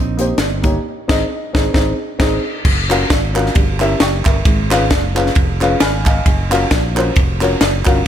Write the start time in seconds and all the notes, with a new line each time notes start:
Already playing: A#1 C4 D#4
0.17 A#3 D#4 G4 C5, closed hi-hat
0.38 G1, snare, closed hi-hat
0.62 A#3 D#4 G4 C#5, kick, closed hi-hat
1.08 G#1 C4 D#4 G#4 D#5, kick, snare, crash
1.53 G#1 C4 D#4 G#4, kick, snare
1.74 G#1 C4 D#4 G#4, kick, snare
2.19 G#1 C4 D#4 G#4, kick, snare, crash
2.65 F#1, kick, crash
2.89 C#4 F4 F#4 A#4 F5, clap, ride
3.10 G#1, kick, snare, ride
3.34 C#4 F4 F#4 A#4 F5, clap, ride
3.46 snare
3.55 G1 G2, kick, ride
3.79 C#4 E4 G4 A#4 E5, clap, ride
4.00 F#1 G5 C#6, snare, ride
4.25 G1 A#4 E5, kick, clap, ride
4.45 G#1 G#2, kick, ride
4.70 C#4 F4 G#4 B4 F5, snare, clap, ride
4.90 F#1, kick, snare, ride
5.15 C#4 F4 G#4 B4 F5, clap, ride
5.26 snare
5.35 F1, kick, ride
5.61 C#4 F4 G#4 B4 F5, clap, ride
5.80 G#1 G#5 B5 F6, snare, ride
6.06 D#5 F5 G#5, kick, clap, ride
6.26 F#1, kick, ride
6.50 C#4 F4 F#4 A#4 F5, clap, ride
6.71 A#1, kick, snare, ride
6.95 C#4 F4 F#4 A#4 C5, clap, ride
7.16 F1, kick, ride
7.40 C#4 F4 F#4 A#4 C#5, clap, ride
7.61 F#1, snare, ride
7.85 G1 C#4 F4 F#4 A#4 F5, kick, clap, ride